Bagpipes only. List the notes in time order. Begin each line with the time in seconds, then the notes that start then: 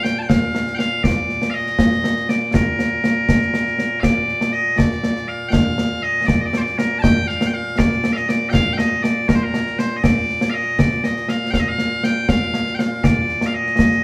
Already playing: A#2
0.03 G5
0.19 G5 A5
0.29 F5
0.75 F5 G5
1.03 D5
1.50 D#5 F5
2.29 D5
2.54 A#4
4.00 D5 F5
4.53 D#5
4.78 D5
5.28 F5
5.49 F5 G5
6.03 D#5
6.26 D5
6.41 D#5
6.46 D5
6.57 C5 D5
6.78 A#4
6.99 G5 A5
7.28 F5
7.47 G5
7.54 F5
7.78 D5
8.13 D#5 F5
8.29 D5
8.49 F5 G5
8.73 G5
8.78 D#5
9.03 D5
9.28 A#4
9.35 C5
9.43 A#4
9.79 C5
9.96 D#5
10.03 D5
10.50 D#5 F5
10.79 D5
11.04 D#5
11.29 F5
11.51 F5 G5
11.60 D#5
11.68 F5
12.04 G5
12.29 F5
12.75 G5
12.79 F5
13.04 D5
13.46 F5
13.54 D#5